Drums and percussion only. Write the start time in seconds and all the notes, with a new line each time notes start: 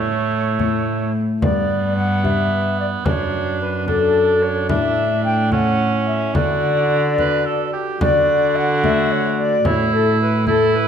0.59 frame drum
1.42 frame drum
2.25 frame drum
3.06 frame drum
3.88 frame drum
4.69 frame drum
5.52 frame drum
6.35 frame drum
7.18 frame drum
8.01 frame drum
8.84 frame drum
9.65 frame drum
10.47 frame drum